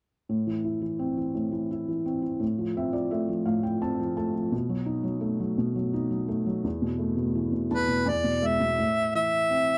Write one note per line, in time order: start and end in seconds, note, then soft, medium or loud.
0.29 1.33 A2 soft
0.47 0.80 E3 soft
0.64 1.69 E4 soft
0.82 1.16 E3 soft
0.99 2.04 C4 soft
1.17 1.50 E3 soft
1.35 2.38 A2 soft
1.52 1.87 E3 soft
1.71 2.40 E4 soft
1.88 2.21 E3 soft
2.06 2.40 C4 soft
2.22 2.40 E3 soft
2.40 3.44 A2 soft
2.58 2.91 F3 soft
2.77 3.80 C4 soft
2.77 2.93 E5 soft
2.93 3.27 F3 soft
2.93 3.10 D5 soft
3.11 4.15 A3 soft
3.11 3.44 E5 soft
3.29 3.61 F3 soft
3.46 4.49 A2 soft
3.46 3.63 F5 soft
3.63 3.98 F3 soft
3.63 3.81 G5 soft
3.82 4.51 C4 soft
3.82 4.15 A5 soft
4.00 4.33 F3 soft
4.17 4.52 A3 soft
4.17 4.50 A5 soft
4.34 4.52 F3 soft
4.52 5.57 B2 soft
4.69 5.02 F#3 soft
4.86 5.92 D#4 soft
5.04 5.38 F#3 soft
5.21 6.27 A3 soft
5.40 5.74 F#3 soft
5.58 6.61 B2 soft
5.75 6.09 F#3 soft
5.94 6.63 D#4 soft
6.11 6.45 F#3 soft
6.28 6.63 A3 soft
6.46 6.64 F#3 soft
6.64 7.69 E2 soft
6.82 7.15 B2 soft
6.98 8.02 A3 soft
7.17 7.51 B2 soft
7.35 8.04 E3 soft
7.52 7.87 B2 soft
7.71 8.04 E2 soft
7.71 8.10 B4 medium
7.71 8.04 A5 soft
7.88 8.06 B2 soft
8.06 8.75 E2 soft
8.06 8.48 D5 medium
8.06 8.39 G#5 soft
8.24 8.59 B2 soft
8.42 8.77 G#3 soft
8.42 8.75 E5 soft
8.46 9.15 E5 medium
8.60 8.77 B2 soft
8.78 9.78 A2 soft
9.15 9.78 E3 soft
9.15 9.78 E5 medium
9.50 9.78 C4 soft